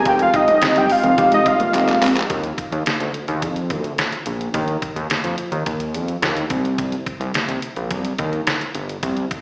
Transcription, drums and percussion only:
0.05 kick loud
0.05 closed hi-hat medium
0.19 closed hi-hat medium
0.34 kick loud
0.34 closed hi-hat medium
0.48 closed hi-hat medium
0.62 snare loud
0.62 closed hi-hat loud
0.76 closed hi-hat medium
0.90 open hi-hat medium
1.04 closed hi-hat soft
1.18 kick loud
1.18 closed hi-hat medium
1.32 closed hi-hat medium
1.46 kick medium
1.46 closed hi-hat medium
1.60 closed hi-hat soft
1.74 clap medium
1.74 closed hi-hat medium
1.89 clap medium
1.89 closed hi-hat medium
2.02 clap loud
2.02 open hi-hat medium
2.17 clap loud
2.17 closed hi-hat soft
2.30 kick loud
2.30 closed hi-hat medium
2.44 closed hi-hat soft
2.58 kick medium
2.58 closed hi-hat medium
2.72 closed hi-hat soft
2.86 snare loud
2.86 closed hi-hat loud
3.00 closed hi-hat soft
3.14 closed hi-hat medium
3.28 closed hi-hat soft
3.42 kick medium
3.42 closed hi-hat medium
3.56 closed hi-hat soft
3.70 kick medium
3.70 closed hi-hat medium
3.84 closed hi-hat soft
3.98 snare loud
3.98 closed hi-hat medium
4.13 closed hi-hat soft
4.26 closed hi-hat medium
4.41 closed hi-hat soft
4.54 kick loud
4.54 closed hi-hat medium
4.68 closed hi-hat soft
4.82 kick loud
4.82 closed hi-hat medium
4.96 closed hi-hat soft
5.10 snare loud
5.10 closed hi-hat loud
5.24 closed hi-hat medium
5.38 closed hi-hat medium
5.52 closed hi-hat soft
5.66 kick loud
5.66 closed hi-hat medium
5.80 closed hi-hat medium
5.94 closed hi-hat medium
6.08 closed hi-hat soft
6.23 snare loud
6.23 closed hi-hat medium
6.37 closed hi-hat soft
6.50 kick loud
6.50 closed hi-hat medium
6.65 closed hi-hat soft
6.78 kick loud
6.78 closed hi-hat medium
6.92 closed hi-hat medium
7.06 kick loud
7.06 closed hi-hat medium
7.21 closed hi-hat soft
7.34 snare loud
7.34 closed hi-hat loud
7.49 closed hi-hat medium
7.62 closed hi-hat medium
7.76 closed hi-hat soft
7.91 kick medium
7.91 closed hi-hat medium
8.05 closed hi-hat medium
8.18 kick medium
8.18 closed hi-hat medium
8.33 closed hi-hat soft
8.47 snare loud
8.47 closed hi-hat medium
8.61 closed hi-hat soft
8.75 closed hi-hat medium
8.89 closed hi-hat soft
9.03 kick loud
9.03 closed hi-hat medium
9.17 closed hi-hat soft
9.31 kick medium
9.31 closed hi-hat medium

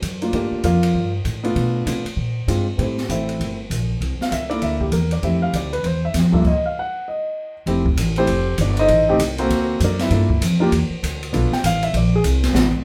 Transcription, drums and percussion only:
0.02 kick soft
0.02 hi-hat pedal medium
0.02 ride medium
0.22 ride soft
0.33 kick soft
0.33 ride soft
0.64 kick soft
0.64 hi-hat pedal soft
0.64 ride medium
0.83 ride medium
0.94 kick soft
1.25 kick soft
1.25 hi-hat pedal soft
1.25 ride soft
1.45 ride soft
1.56 kick soft
1.56 ride soft
1.86 kick soft
1.86 hi-hat pedal soft
1.86 ride medium
2.06 ride soft
2.17 kick soft
2.48 kick soft
2.48 hi-hat pedal soft
2.48 ride medium
2.78 kick soft
2.78 ride soft
2.98 snare soft
3.09 kick soft
3.09 hi-hat pedal soft
3.09 ride soft
3.29 ride soft
3.40 kick soft
3.40 ride soft
3.70 kick soft
3.70 hi-hat pedal soft
3.70 ride medium
4.01 kick soft
4.01 ride soft
4.21 snare soft
4.32 kick soft
4.32 hi-hat pedal soft
4.32 ride medium
4.51 ride soft
4.62 kick soft
4.62 ride soft
4.81 kick soft
4.92 kick soft
4.92 hi-hat pedal soft
4.92 ride medium
5.11 ride soft
5.23 kick soft
5.23 ride soft
5.53 kick soft
5.53 hi-hat pedal soft
5.53 ride medium
5.73 ride soft
5.84 kick soft
5.84 ride soft
6.14 kick soft
6.14 snare soft
6.14 hi-hat pedal soft
6.14 ride medium
6.33 kick soft
6.45 kick medium
6.45 crash soft
7.67 kick soft
7.67 ride soft
7.86 kick medium
7.97 kick soft
7.97 hi-hat pedal medium
7.97 ride medium
8.16 ride soft
8.27 kick soft
8.27 ride medium
8.58 kick soft
8.58 hi-hat pedal soft
8.58 ride medium
8.77 ride soft
8.88 kick soft
8.88 ride medium
9.19 kick soft
9.19 hi-hat pedal medium
9.19 ride medium
9.38 ride soft
9.50 kick soft
9.50 ride medium
9.80 kick soft
9.80 hi-hat pedal medium
9.80 ride medium
9.99 snare soft
9.99 ride soft
10.11 kick soft
10.11 ride soft
10.30 kick medium
10.41 kick soft
10.41 hi-hat pedal medium
10.41 ride medium
10.72 kick soft
10.72 ride medium
11.03 kick soft
11.03 hi-hat pedal medium
11.03 ride medium
11.23 ride soft
11.34 kick soft
11.34 ride medium
11.53 snare soft
11.64 kick soft
11.64 hi-hat pedal medium
11.64 ride medium
11.83 ride soft
11.94 kick soft
11.94 ride medium
12.24 kick soft
12.24 hi-hat pedal medium
12.24 ride medium
12.44 snare soft
12.44 ride soft
12.55 snare medium

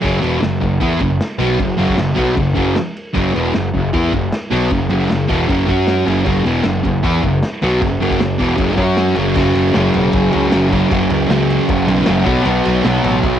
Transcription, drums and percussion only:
0.04 kick loud
0.04 crash medium
0.24 crash medium
0.43 snare loud
0.43 crash medium
0.62 kick medium
0.62 crash medium
0.81 kick loud
0.81 crash medium
1.00 kick medium
1.00 crash medium
1.21 snare loud
1.21 crash medium
1.40 crash medium
1.59 kick loud
1.59 crash medium
1.79 crash medium
1.89 kick medium
1.98 snare loud
1.98 crash medium
2.18 kick medium
2.18 crash medium
2.37 kick loud
2.37 crash medium
2.57 kick medium
2.57 crash medium
2.76 snare loud
2.76 crash medium
2.97 crash medium
3.15 kick loud
3.15 crash medium
3.36 crash medium
3.54 snare loud
3.54 crash medium
3.74 kick medium
3.74 crash medium
3.94 kick loud
3.94 crash medium
4.04 snare soft
4.13 kick medium
4.13 crash medium
4.33 snare loud
4.33 crash medium
4.52 crash medium
4.71 kick loud
4.71 crash medium
4.90 crash medium
5.10 snare loud
5.10 crash medium
5.29 kick medium
5.29 crash medium
5.49 kick loud
5.49 crash medium
5.69 kick medium
5.69 crash medium
5.87 snare loud
5.87 crash medium
6.08 crash medium
6.26 kick loud
6.26 crash medium
6.46 crash medium
6.63 snare loud
6.63 crash medium
6.85 kick medium
6.85 crash medium
7.04 kick loud
7.04 crash medium
7.23 kick medium
7.23 crash medium
7.43 snare loud
7.43 crash medium
7.62 crash medium
7.82 kick loud
7.82 crash medium
8.02 crash medium
8.11 kick medium
8.20 snare loud
8.20 crash medium
8.40 kick medium
8.40 crash medium
8.58 kick loud
8.58 crash medium
8.69 snare soft
8.78 kick medium
8.78 crash medium
8.97 snare loud
8.97 crash medium
9.16 crash medium
9.35 kick loud
9.35 crash loud
9.55 ride medium
9.74 snare loud
9.74 ride loud
9.94 ride medium
10.13 kick loud
10.13 ride loud
10.33 ride medium
10.52 snare loud
10.52 ride loud
10.72 kick medium
10.72 ride medium
10.91 kick loud
10.91 ride loud
11.10 ride medium
11.30 snare loud
11.30 ride loud
11.41 snare soft
11.50 ride medium
11.69 kick loud
11.69 ride loud
11.88 ride medium
11.97 snare soft
12.06 snare loud
12.06 ride loud
12.26 kick loud
12.26 ride medium
12.45 ride loud
12.65 ride medium
12.85 snare loud
12.85 ride loud
13.04 ride medium
13.23 kick loud
13.23 ride loud

